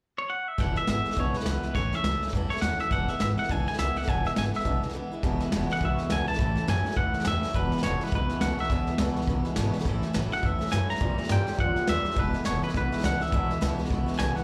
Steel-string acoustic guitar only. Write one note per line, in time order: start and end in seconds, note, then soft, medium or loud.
0.58 0.76 E2 medium
0.58 0.76 B2 medium
0.58 0.77 E3 medium
0.58 0.76 G#3 medium
0.58 0.75 B3 medium
0.58 0.74 E4 medium
0.76 0.86 E3 soft
0.76 0.87 G#3 soft
0.76 0.88 B3 soft
0.76 0.88 E4 medium
0.87 1.05 E3 medium
0.87 1.05 G#3 medium
0.87 1.05 B3 medium
0.87 1.04 E4 medium
1.05 1.16 E3 soft
1.05 1.17 G#3 soft
1.05 1.17 B3 soft
1.05 1.17 E4 soft
1.17 1.34 E2 medium
1.17 1.35 B2 medium
1.17 1.35 E3 medium
1.17 1.35 G#3 medium
1.17 1.34 B3 medium
1.17 1.33 E4 medium
1.34 1.44 E3 soft
1.34 1.45 G#3 soft
1.34 1.46 B3 medium
1.34 1.46 E4 soft
1.45 1.63 E3 medium
1.45 1.64 G#3 medium
1.45 1.64 B3 medium
1.45 1.62 E4 medium
1.64 1.75 E3 soft
1.64 1.76 G#3 soft
1.64 1.76 B3 soft
1.64 1.75 E4 soft
1.75 1.93 A2 medium
1.75 1.93 E3 medium
1.75 1.93 A3 medium
1.75 1.94 C#4 medium
1.75 1.92 E4 medium
1.93 2.05 A3 soft
1.93 2.05 C#4 soft
1.93 2.05 E4 medium
2.05 2.22 E3 medium
2.05 2.23 A3 medium
2.05 2.23 C#4 medium
2.05 2.22 E4 medium
2.23 2.34 A3 soft
2.23 2.34 C#4 soft
2.23 2.34 E4 medium
2.35 2.51 A2 medium
2.35 2.52 E3 medium
2.35 2.52 A3 medium
2.35 2.52 C#4 medium
2.35 2.50 E4 loud
2.51 2.62 A3 soft
2.51 2.64 C#4 medium
2.51 2.63 E4 medium
2.62 2.80 E3 medium
2.62 2.80 A3 medium
2.62 2.80 C#4 medium
2.62 2.78 E4 medium
2.79 2.92 A3 soft
2.79 2.92 C#4 medium
2.79 2.91 E4 medium
2.91 3.09 E2 medium
2.91 3.09 B2 medium
2.91 3.09 E3 medium
2.91 3.09 G#3 medium
2.91 3.08 B3 medium
2.91 3.07 E4 medium
3.08 3.18 E3 soft
3.08 3.19 G#3 soft
3.08 3.20 B3 soft
3.08 3.20 E4 soft
3.19 3.37 E3 medium
3.19 3.38 G#3 medium
3.19 3.37 B3 medium
3.19 3.36 E4 medium
3.37 3.50 E3 soft
3.37 3.50 G#3 soft
3.37 3.50 B3 medium
3.37 3.49 E4 medium
3.50 3.67 E2 medium
3.50 3.67 B2 medium
3.50 3.68 E3 medium
3.50 3.68 G#3 medium
3.50 3.67 B3 medium
3.50 3.66 E4 medium
3.68 3.78 E3 soft
3.68 3.79 G#3 soft
3.68 3.79 B3 soft
3.68 3.79 E4 medium
3.79 3.96 E3 medium
3.79 3.97 G#3 medium
3.79 3.96 B3 medium
3.79 3.95 E4 medium
3.96 4.08 E3 soft
3.96 4.08 G#3 soft
3.96 4.08 B3 soft
3.96 4.07 E4 medium
4.08 4.25 E2 medium
4.08 4.25 B2 medium
4.08 4.26 E3 medium
4.08 4.26 G#3 medium
4.08 4.25 B3 medium
4.08 4.23 E4 medium
4.25 4.35 E3 soft
4.25 4.36 G#3 soft
4.25 4.37 B3 soft
4.25 4.36 E4 medium
4.36 4.54 E3 medium
4.36 4.54 G#3 medium
4.36 4.54 B3 medium
4.36 4.53 E4 medium
4.54 4.64 E3 soft
4.54 4.66 G#3 soft
4.54 4.65 B3 soft
4.54 4.65 E4 soft
4.65 4.83 E2 medium
4.65 4.83 B2 medium
4.65 4.83 E3 medium
4.65 4.84 G#3 medium
4.65 4.83 B3 medium
4.65 4.81 E4 medium
4.82 4.92 E3 soft
4.82 4.94 G#3 soft
4.82 4.95 B3 medium
4.82 4.94 E4 soft
4.93 5.11 E3 medium
4.93 5.12 G#3 medium
4.93 5.11 B3 medium
4.93 5.10 E4 medium
5.12 5.23 E3 medium
5.12 5.23 G#3 medium
5.12 5.24 B3 medium
5.12 5.23 E4 medium
5.23 5.41 E2 medium
5.23 5.41 B2 loud
5.23 5.41 E3 medium
5.23 5.41 G#3 medium
5.23 5.41 B3 medium
5.23 5.39 E4 medium
5.40 5.52 E3 soft
5.40 5.52 G#3 medium
5.40 5.53 B3 medium
5.40 5.52 E4 medium
5.52 5.70 E2 loud
5.52 5.70 B2 medium
5.52 5.70 E3 loud
5.52 5.70 G#3 loud
5.52 5.70 B3 loud
5.52 5.68 E4 loud
5.70 5.81 E3 soft
5.70 5.81 G#3 soft
5.70 5.82 B3 medium
5.70 5.81 E4 medium
5.82 5.99 E3 medium
5.82 5.99 G#3 medium
5.82 6.00 B3 medium
5.82 5.99 E4 medium
6.00 6.11 E3 soft
6.00 6.12 G#3 medium
6.00 6.12 B3 medium
6.00 6.11 E4 medium
6.11 6.28 E2 medium
6.11 6.29 B2 medium
6.11 6.29 E3 medium
6.11 6.29 G#3 medium
6.11 6.28 B3 medium
6.11 6.27 E4 medium
6.28 6.39 E3 soft
6.28 6.40 G#3 soft
6.28 6.40 B3 medium
6.28 6.39 E4 medium
6.39 6.57 A2 medium
6.39 6.57 E3 medium
6.39 6.57 A3 medium
6.39 6.56 C#4 medium
6.39 6.54 E4 medium
6.55 6.67 A3 soft
6.55 6.68 C#4 soft
6.55 6.67 E4 medium
6.67 6.85 A2 medium
6.67 6.85 E3 medium
6.67 6.86 A3 medium
6.67 6.85 C#4 medium
6.67 6.84 E4 medium
6.85 6.95 A3 soft
6.85 6.96 C#4 medium
6.85 6.97 E4 medium
6.95 7.13 E3 medium
6.95 7.14 A3 medium
6.95 7.14 C#4 medium
6.95 7.12 E4 medium
7.14 7.25 A3 soft
7.14 7.26 C#4 soft
7.14 7.25 E4 medium
7.25 7.43 A2 medium
7.25 7.43 E3 medium
7.25 7.44 A3 medium
7.25 7.44 C#4 medium
7.25 7.42 E4 loud
7.43 7.56 A3 soft
7.43 7.56 C#4 medium
7.43 7.55 E4 medium
7.54 7.72 E2 medium
7.54 7.72 B2 medium
7.54 7.72 E3 medium
7.54 7.73 G#3 medium
7.54 7.73 B3 medium
7.54 7.71 E4 medium
7.72 7.85 E3 soft
7.72 7.85 G#3 soft
7.72 7.84 B3 soft
7.72 7.84 E4 medium
7.85 8.02 E2 medium
7.85 8.02 B2 medium
7.85 8.02 E3 medium
7.85 8.02 G#3 medium
7.85 8.02 B3 medium
7.85 8.01 E4 medium
8.02 8.13 E3 soft
8.02 8.13 G#3 soft
8.02 8.13 B3 medium
8.02 8.13 E4 medium
8.14 8.31 E3 medium
8.14 8.31 G#3 medium
8.14 8.31 B3 medium
8.14 8.29 E4 medium
8.31 8.42 E3 soft
8.31 8.42 G#3 soft
8.31 8.43 B3 medium
8.31 8.42 E4 medium
8.42 8.59 E2 medium
8.42 8.59 B2 medium
8.42 8.60 E3 medium
8.42 8.60 G#3 medium
8.42 8.59 B3 medium
8.42 8.58 E4 loud
8.59 8.70 E3 medium
8.59 8.71 G#3 soft
8.59 8.71 B3 medium
8.59 8.70 E4 medium
8.70 8.88 E2 medium
8.70 8.88 B2 medium
8.70 8.88 E3 medium
8.70 8.89 G#3 medium
8.70 8.88 B3 medium
8.70 8.87 E4 medium
8.88 8.99 E3 soft
8.88 9.00 G#3 soft
8.88 9.00 B3 soft
8.88 8.99 E4 medium
8.99 9.17 E2 medium
8.99 9.17 B2 medium
8.99 9.17 E3 loud
8.99 9.17 G#3 medium
8.99 9.16 B3 loud
8.99 9.15 E4 medium
9.16 9.27 E3 soft
9.16 9.28 G#3 medium
9.16 9.28 B3 medium
9.16 9.28 E4 medium
9.28 9.45 E3 medium
9.28 9.45 G#3 medium
9.28 9.45 B3 medium
9.28 9.44 E4 medium
9.45 9.56 E3 medium
9.45 9.57 G#3 medium
9.45 9.57 B3 medium
9.45 9.57 E4 medium
9.57 9.74 E2 loud
9.57 9.74 B2 medium
9.57 9.75 E3 loud
9.57 9.75 G#3 loud
9.57 9.74 B3 medium
9.57 9.73 E4 loud
9.74 9.85 E3 medium
9.74 9.86 G#3 medium
9.74 9.86 B3 medium
9.74 9.86 E4 medium
9.85 10.03 A2 medium
9.85 10.03 E3 loud
9.85 10.04 A3 medium
9.85 10.03 C#4 loud
9.85 10.01 E4 loud
10.02 10.13 A3 soft
10.02 10.14 C#4 medium
10.02 10.14 E4 medium
10.13 10.31 A2 loud
10.13 10.32 E3 medium
10.13 10.32 A3 medium
10.13 10.31 C#4 medium
10.13 10.29 E4 medium
10.30 10.42 A3 soft
10.30 10.43 C#4 medium
10.30 10.43 E4 medium
10.42 10.60 E3 medium
10.42 10.60 A3 medium
10.42 10.59 C#4 medium
10.42 10.57 E4 medium
10.59 10.70 A3 soft
10.59 10.70 C#4 medium
10.59 10.71 E4 medium
10.70 10.89 A2 medium
10.70 10.89 E3 medium
10.70 10.89 A3 medium
10.70 10.89 C#4 medium
10.70 10.87 E4 loud
10.89 11.01 A3 soft
10.89 11.00 C#4 medium
10.89 11.01 E4 medium
11.00 11.18 A#2 medium
11.00 11.18 E3 medium
11.00 11.19 G3 medium
11.00 11.18 C#4 medium
11.00 11.17 E4 medium
11.18 11.30 G3 soft
11.18 11.31 C#4 soft
11.18 11.30 E4 soft
11.30 11.48 A#2 medium
11.30 11.48 E3 medium
11.30 11.48 G3 medium
11.30 11.47 C#4 medium
11.30 11.46 E4 medium
11.47 11.59 G3 soft
11.47 11.59 C#4 soft
11.47 11.59 E4 medium
11.59 11.76 E3 medium
11.59 11.77 G3 medium
11.59 11.76 C#4 medium
11.59 11.75 E4 medium
11.76 11.88 G3 soft
11.76 11.88 C#4 medium
11.76 11.88 E4 medium
11.88 12.05 A#2 medium
11.88 12.06 E3 medium
11.88 12.06 G3 medium
11.88 12.05 C#4 medium
11.88 12.03 E4 loud
12.05 12.16 G3 soft
12.05 12.17 C#4 soft
12.05 12.17 E4 medium
12.16 12.34 E2 medium
12.16 12.34 B2 medium
12.16 12.34 E3 medium
12.16 12.34 G#3 medium
12.16 12.33 B3 medium
12.16 12.32 E4 medium
12.33 12.45 E3 soft
12.33 12.45 G#3 soft
12.33 12.45 B3 medium
12.33 12.45 E4 medium
12.44 12.62 E2 medium
12.44 12.63 B2 medium
12.44 12.63 E3 medium
12.44 12.63 G#3 medium
12.44 12.62 B3 medium
12.44 12.61 E4 loud
12.62 12.73 E3 soft
12.62 12.74 G#3 medium
12.62 12.75 B3 soft
12.62 12.74 E4 medium
12.74 12.92 E3 medium
12.74 12.92 G#3 medium
12.74 12.91 B3 medium
12.74 12.91 E4 medium
12.92 13.02 E3 soft
12.92 13.03 G#3 medium
12.92 13.03 B3 medium
12.92 13.04 E4 medium
13.02 13.20 E2 medium
13.02 13.21 B2 loud
13.02 13.21 E3 medium
13.02 13.21 G#3 medium
13.02 13.21 B3 medium
13.02 13.19 E4 medium
13.20 13.32 E3 soft
13.20 13.32 G#3 medium
13.20 13.33 B3 medium
13.20 13.32 E4 medium
13.32 13.50 E2 medium
13.32 13.50 B2 medium
13.32 13.50 E3 medium
13.32 13.50 G#3 medium
13.32 13.50 B3 medium
13.32 13.49 E4 medium
13.50 13.61 E3 soft
13.50 13.61 G#3 soft
13.50 13.61 B3 medium
13.50 13.61 E4 medium
13.61 13.79 E2 medium
13.61 13.79 B2 medium
13.61 13.79 E3 loud
13.61 13.78 G#3 loud
13.61 13.78 B3 loud
13.61 13.77 E4 medium
13.78 13.88 E3 medium
13.78 13.89 G#3 medium
13.78 13.90 B3 medium
13.78 13.90 E4 medium
13.89 14.07 E3 medium
13.89 14.08 G#3 medium
13.89 14.07 B3 medium
13.89 14.05 E4 medium
14.06 14.17 E3 medium
14.06 14.18 G#3 medium
14.06 14.18 B3 medium
14.06 14.18 E4 medium
14.17 14.36 E2 medium
14.17 14.36 B2 medium
14.17 14.36 E3 medium
14.17 14.36 G#3 medium
14.17 14.35 B3 medium
14.17 14.34 E4 medium
14.35 14.44 E3 soft
14.35 14.44 G#3 soft
14.35 14.44 B3 medium
14.35 14.44 E4 medium